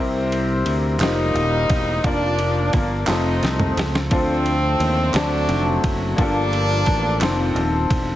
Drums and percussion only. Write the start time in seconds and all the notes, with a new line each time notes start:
0.32 ride
0.66 ride
1.00 snare, clap, ride
1.36 ride
1.70 kick, ride
2.04 kick, ride
2.39 ride
2.73 kick, ride
3.07 snare, clap, ride
3.43 snare, ride
3.60 mid tom
3.77 snare, ride
3.95 snare
4.11 kick, ride
4.46 ride
4.80 ride
5.14 snare, clap, ride
5.49 ride
5.84 kick, ride
6.18 kick, ride
6.53 ride
6.86 kick, ride
7.21 snare, clap, ride
7.56 ride
7.90 kick, ride